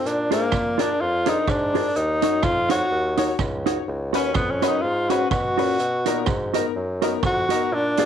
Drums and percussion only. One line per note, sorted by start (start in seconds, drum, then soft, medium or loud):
0.06 hi-hat pedal medium
0.32 closed hi-hat loud
0.52 kick loud
0.52 cross-stick loud
0.79 closed hi-hat loud
1.26 closed hi-hat medium
1.48 kick loud
1.48 cross-stick loud
1.75 open hi-hat medium
1.95 hi-hat pedal medium
2.22 closed hi-hat medium
2.43 kick loud
2.43 cross-stick loud
2.70 closed hi-hat loud
3.17 closed hi-hat medium
3.39 kick loud
3.39 cross-stick loud
3.66 closed hi-hat medium
4.14 closed hi-hat loud
4.34 kick loud
4.34 cross-stick loud
4.62 cross-stick medium
4.62 closed hi-hat loud
5.10 closed hi-hat medium
5.31 kick loud
5.31 cross-stick loud
5.58 open hi-hat medium
5.79 hi-hat pedal medium
6.06 closed hi-hat loud
6.26 kick loud
6.26 cross-stick loud
6.54 closed hi-hat loud
7.02 closed hi-hat medium
7.23 kick loud
7.23 cross-stick loud
7.50 closed hi-hat loud
7.97 closed hi-hat medium